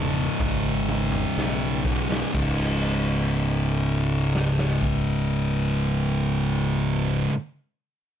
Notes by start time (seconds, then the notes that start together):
Already playing: E1 C#2 G#2 C#3
0.40 G#1, kick, floor tom, mid tom
0.89 mid tom
1.12 floor tom
1.38 B1, snare
1.85 C#2 G#2 C#3, kick
2.12 snare
2.33 C#1 C#2 G#2 C#3, kick, crash
4.35 snare
4.59 snare
4.83 kick